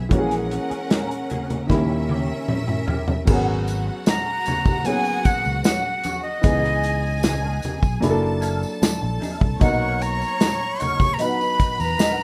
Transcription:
Already playing: fingered electric bass B1, grand piano D#3 E3 B3 C#4 G#4
0.09 fingered electric bass A#1, grand piano E3 G#3 A#3 C#4 F#4, clean electric guitar A#3 C#4, string section C#4 A#4 F#5, kick, closed hi-hat, muted conga
0.13 clean electric guitar G#4
0.19 grand piano G#4
0.31 muted clean electric guitar stroke, snare, closed hi-hat
0.51 muted clean electric guitar stroke, closed hi-hat
0.70 clean electric guitar A#3 C#4 G#4, muted fingered electric bass stroke, closed hi-hat
0.90 clean electric guitar A#3 C#4 A#4, snare, closed hi-hat, high conga
1.10 muted clean electric guitar stroke, closed hi-hat
1.29 clean electric guitar A#3 C#4 G#4, closed hi-hat, muted conga, low conga
1.49 muted clean electric guitar stroke, closed hi-hat, low conga
1.67 fingered electric bass D#2, grand piano D#3 G3 A#3 C#4 E4, string section C#4 A#4 E5, muted clean electric guitar stroke, kick, snare, low conga
1.90 muted clean electric guitar stroke
2.09 clean electric guitar C#4 E4 G4, high tom
2.29 muted clean electric guitar stroke
2.48 muted clean electric guitar stroke, mid tom, high conga
2.67 muted clean electric guitar stroke, mid tom
2.86 clean electric guitar C#4 E4 G4, floor tom, high conga
3.07 muted clean electric guitar stroke, floor tom, high conga
3.25 fingered electric bass G#1, grand piano F#3 B3 C#4 G#4 A#4, clean electric guitar B3 C#4 F#4, string section F#4 F#5, kick, crash, tambourine, muted conga
3.67 closed hi-hat, tambourine
3.86 muted clean electric guitar stroke
4.06 flute A#5, muted clean electric guitar stroke, snare, closed hi-hat, tambourine, high conga
4.25 muted clean electric guitar stroke
4.45 clean electric guitar B3 C#4 F#4, closed hi-hat, tambourine, muted conga, low conga
4.65 muted clean electric guitar stroke, kick, tambourine, low conga
4.84 grand piano F#3 A#3 B3 C#4 G#4, clean electric guitar B3 C#4 F#4, flute G#5, closed hi-hat, tambourine
5.05 muted clean electric guitar stroke, tambourine
5.24 clean electric guitar B3 C#4 G#4, flute F#5, kick, closed hi-hat, tambourine
5.44 fingered electric bass C#2, muted clean electric guitar stroke, tambourine
5.64 clean electric guitar B3 C#4 F#4, flute F#5, snare, closed hi-hat, tambourine, high conga
5.84 muted clean electric guitar stroke
6.03 clean electric guitar B3 C#4 F#4, closed hi-hat, tambourine, high conga
6.22 flute D#5, muted clean electric guitar stroke
6.41 fingered electric bass C#2, clean electric guitar E3 B3 D#4, grand piano E3 B3 C#4 D#4 G#4, string section G#4 G#5, kick, closed hi-hat, tambourine, muted conga
6.64 snare
6.83 closed hi-hat, tambourine
7.02 muted clean electric guitar stroke
7.21 muted clean electric guitar stroke, snare, closed hi-hat, tambourine, high conga
7.41 clean electric guitar E3 B3 D#4
7.61 muted clean electric guitar stroke, closed hi-hat, tambourine, muted conga, low conga
7.81 fingered electric bass B1, muted clean electric guitar stroke, kick, tambourine
8.00 fingered electric bass F#1, grand piano F#3 A#3 D4 E4 G#4, string section A4 A5, muted clean electric guitar stroke, closed hi-hat, tambourine, low conga
8.10 grand piano A4
8.21 muted clean electric guitar stroke
8.41 clean electric guitar A#3 E4 A4, closed hi-hat, tambourine
8.61 muted clean electric guitar stroke, tambourine
8.81 muted clean electric guitar stroke, muted fingered electric bass stroke, snare, closed hi-hat, tambourine, high conga
9.01 fingered electric bass A#1, muted clean electric guitar stroke
9.20 clean electric guitar A#3 E4 A4, open hi-hat, tambourine, high conga
9.41 fingered electric bass C2, muted clean electric guitar stroke, kick
9.59 fingered electric bass B1, grand piano F#3 A#3 B3 D#4 A#4, clean electric guitar D#4 F#4 A#4, string section C#5 C#6, flute F#5, kick, closed hi-hat, tambourine, muted conga
10.01 flute A#5, closed hi-hat, tambourine
10.20 muted clean electric guitar stroke, tambourine
10.40 muted clean electric guitar stroke, snare, closed hi-hat, tambourine, high conga
10.60 muted clean electric guitar stroke
10.79 clean electric guitar D#4 F#4 A#4, flute C#6, closed hi-hat, tambourine, muted conga, low conga
10.99 muted clean electric guitar stroke, kick, tambourine, low conga
11.14 flute A#5
11.19 grand piano F#3 B3 D#4 B4, clean electric guitar D#4 F#4 A#4, string section B4 B5, flute B5, closed hi-hat, tambourine, muted conga
11.39 muted clean electric guitar stroke, tambourine
11.58 clean electric guitar D#4 F#4 B4, muted fingered electric bass stroke, kick, closed hi-hat, tambourine
11.79 fingered electric bass E2, flute A#5, muted clean electric guitar stroke, tambourine
11.99 clean electric guitar D#4 F#4 A#4, snare, closed hi-hat, tambourine, high conga
12.19 muted clean electric guitar stroke

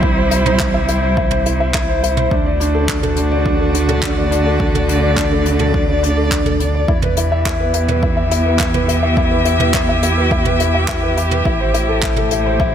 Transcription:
Already playing: sub bass C2, string quartet C3 G3 E4 C5, felt piano E4 C5 E5
0.02 felt piano E4, kick
0.17 felt piano C5
0.31 felt piano E4, closed hi-hat
0.46 felt piano C5, mid tom
0.60 felt piano E4, kick, clap
0.74 felt piano E5
0.88 felt piano E4, closed hi-hat
1.03 felt piano C5
1.17 felt piano E4, kick
1.31 felt piano C5, mid tom
1.46 felt piano E4, closed hi-hat
1.60 felt piano E5
1.74 felt piano E4, kick, clap
1.89 felt piano C5
2.03 felt piano E4, closed hi-hat
2.17 felt piano C5, mid tom
2.31 sub bass D2, string quartet D3, felt piano D4, kick
2.45 string quartet A3, felt piano D5
2.50 string quartet F#4
2.60 felt piano D4, closed hi-hat
2.73 felt piano A4, string quartet D5
2.88 felt piano D4, kick, clap
3.03 felt piano A4, mid tom
3.16 felt piano D4, closed hi-hat
3.31 felt piano D5
3.46 felt piano D4, kick
3.60 felt piano A4
3.75 felt piano D4, closed hi-hat
3.89 felt piano A4, mid tom
4.03 felt piano D4, kick, clap
4.17 felt piano D5
4.31 felt piano D4, closed hi-hat
4.46 felt piano A4
4.60 felt piano D4, kick
4.74 felt piano A4, mid tom
4.88 felt piano D4, closed hi-hat
5.03 felt piano D5
5.17 felt piano D4, kick, clap
5.32 felt piano A4
5.46 felt piano D4, closed hi-hat
5.59 felt piano A4, mid tom
5.74 felt piano D4, kick
5.89 felt piano D5
6.03 felt piano D4, closed hi-hat
6.17 felt piano A4
6.31 felt piano D4, kick, clap
6.46 felt piano A4, mid tom
6.60 felt piano D4, closed hi-hat
6.74 felt piano D5
6.88 sub bass E2, string quartet E3, felt piano E4, kick
7.01 string quartet B3, felt piano B4, mid tom
7.15 felt piano E4, string quartet G4, closed hi-hat
7.32 felt piano E5
7.46 felt piano E4, kick, clap
7.60 felt piano B4
7.74 felt piano E4, closed hi-hat
7.88 felt piano B4, string quartet E5, mid tom
8.03 felt piano E4, kick
8.17 felt piano E5
8.31 felt piano E4, closed hi-hat
8.46 felt piano B4
8.59 felt piano E4, kick, clap
8.74 felt piano B4, mid tom
8.88 felt piano E4, closed hi-hat
9.03 felt piano E5
9.17 felt piano E4, kick
9.31 felt piano B4
9.45 felt piano E4, closed hi-hat
9.60 felt piano B4, mid tom
9.74 felt piano E4, kick, clap
9.89 felt piano E5
10.03 felt piano E4, closed hi-hat
10.17 felt piano B4
10.31 felt piano E4, kick
10.45 felt piano B4, mid tom
10.60 felt piano E4, closed hi-hat
10.74 felt piano E5
10.88 felt piano E4, kick, clap
11.03 felt piano B4
11.17 felt piano E4, closed hi-hat
11.31 felt piano B4, mid tom
11.45 sub bass A1, string quartet A2, felt piano E4, kick
11.60 felt piano C5
11.71 string quartet A3, felt piano E4, closed hi-hat
11.89 felt piano A4
12.03 felt piano E4, kick, clap
12.16 felt piano A4, mid tom
12.31 felt piano E4, string quartet C5, closed hi-hat
12.46 felt piano C5
12.60 felt piano E4, kick

